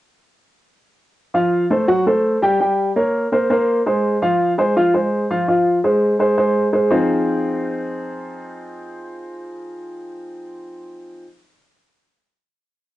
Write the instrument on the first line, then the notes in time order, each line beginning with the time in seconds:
upright piano
1.34 F3 F4 F5
1.70 A3 A4 C5
1.88 F#3 F#4 F#5
2.06 A3 A4 C5
2.42 G3 G4 G5
2.60 G3 G4 G5
2.96 A#3 A#4 C#5
3.32 A#3 A#4 C5
3.50 A#3 A#4 C5
3.86 G#3 G#4 C5
4.22 F3 F4 F5
4.58 G#3 G#4 C5
4.76 F3 F4 F5
4.94 G#3 G#4 C5
5.30 F3 F4 F5
5.48 F3 F4 F5
5.84 G#3 G#4 C5
6.19 G#3 G#4 C5
6.38 G#3 G#4 C5
6.73 G#3 G#4 C5
6.91 F3 C4 D#4 F4 G#4 C5